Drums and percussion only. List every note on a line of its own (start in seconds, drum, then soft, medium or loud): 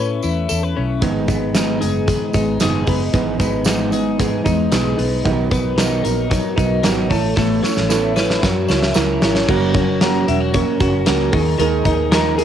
0.23 tambourine soft
0.49 tambourine medium
1.02 kick loud
1.02 closed hi-hat medium
1.02 tambourine soft
1.28 kick medium
1.28 closed hi-hat medium
1.28 tambourine soft
1.55 snare medium
1.55 closed hi-hat medium
1.55 tambourine medium
1.82 closed hi-hat medium
1.82 tambourine soft
2.08 kick medium
2.08 closed hi-hat medium
2.08 tambourine soft
2.33 kick medium
2.33 closed hi-hat medium
2.33 tambourine soft
2.60 snare medium
2.60 closed hi-hat medium
2.60 tambourine medium
2.87 kick medium
2.87 open hi-hat medium
2.87 tambourine soft
3.13 kick loud
3.13 closed hi-hat medium
3.13 tambourine soft
3.40 kick medium
3.40 closed hi-hat medium
3.40 tambourine medium
3.64 snare loud
3.64 closed hi-hat medium
3.64 tambourine medium
3.92 closed hi-hat medium
3.92 tambourine soft
4.20 kick medium
4.20 closed hi-hat medium
4.20 tambourine soft
4.46 kick medium
4.46 closed hi-hat medium
4.46 tambourine soft
4.72 snare medium
4.72 closed hi-hat medium
4.72 tambourine medium
4.99 open hi-hat medium
5.25 kick loud
5.25 closed hi-hat medium
5.51 kick medium
5.51 closed hi-hat medium
5.51 tambourine soft
5.78 snare loud
5.78 closed hi-hat medium
5.78 tambourine medium
6.05 closed hi-hat medium
6.05 tambourine soft
6.31 kick medium
6.31 closed hi-hat medium
6.31 tambourine soft
6.58 kick medium
6.58 closed hi-hat medium
6.58 tambourine soft
6.84 snare medium
6.84 closed hi-hat medium
6.84 tambourine medium
7.10 kick medium
7.10 open hi-hat medium
7.10 tambourine soft
7.37 kick loud
7.37 snare medium
7.37 tambourine soft
7.64 snare medium
7.64 tambourine medium
7.77 snare medium
7.90 snare medium
7.90 tambourine medium
8.16 snare medium
8.16 tambourine soft
8.30 snare medium
8.43 kick medium
8.43 snare medium
8.43 tambourine soft
8.68 snare medium
8.68 tambourine medium
8.82 snare medium
8.94 snare medium
8.94 tambourine medium
9.21 snare medium
9.21 tambourine soft
9.35 snare medium
9.48 kick loud
9.48 crash medium
9.74 kick loud
9.74 closed hi-hat medium
10.01 snare loud
10.01 closed hi-hat medium
10.28 closed hi-hat medium
10.54 kick medium
10.54 closed hi-hat medium
10.80 kick medium
10.80 closed hi-hat medium
11.06 snare loud
11.06 closed hi-hat medium
11.33 kick loud
11.33 open hi-hat medium
11.60 closed hi-hat medium
11.85 kick medium
11.85 closed hi-hat medium
12.12 snare loud
12.12 closed hi-hat medium
12.39 closed hi-hat medium